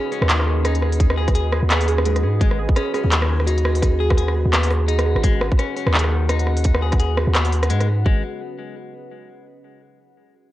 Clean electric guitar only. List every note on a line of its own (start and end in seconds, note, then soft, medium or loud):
0.00 0.11 C#4 loud
0.12 0.29 C#4 medium
0.29 0.63 D#3 loud
0.65 1.16 D#4 medium
1.18 1.29 G#4 medium
1.35 1.52 G#4 medium
1.70 1.87 B3 medium
2.06 2.22 G#2 medium
2.41 2.58 G#3 medium
2.76 2.93 C#4 loud
2.94 3.11 C#4 medium
3.11 3.45 D#3 loud
3.47 3.98 D#4 medium
4.00 4.11 G#4 medium
4.17 4.34 G#4 medium
4.53 4.70 B3 medium
4.88 5.22 D#4 medium
5.23 5.40 G#3 medium
5.59 5.75 C#4 loud
5.76 5.93 C#4 medium
5.94 6.28 D#3 loud
6.29 6.81 D#4 medium
6.82 6.93 G#4 medium
7.00 7.17 G#4 medium
7.35 7.52 B3 medium
7.70 7.87 G#3 loud
8.06 8.22 G#3 medium